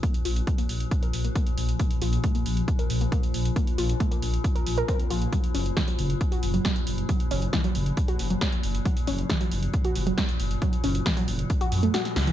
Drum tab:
HH |xxoxxxoxxxoxxxox|xxoxxxoxxxoxxxox|xxoxxxoxxxoxxxox|xxoxxxoxxxoxxxox|
SD |----------------|----------------|----------------|----o-------o---|
BD |o---o---o---o---|o---o---o---o---|o---o---o---o---|o---o---o---o---|

HH |xxoxxxoxxxoxxxox|xxoxxxoxxxoxxxox|xxoxxxoxxxoxxxox|
SD |----o-------o---|----o-------o---|----o-------ooo-|
BD |o---o---o---o---|o---o---o---o---|o---o---o-------|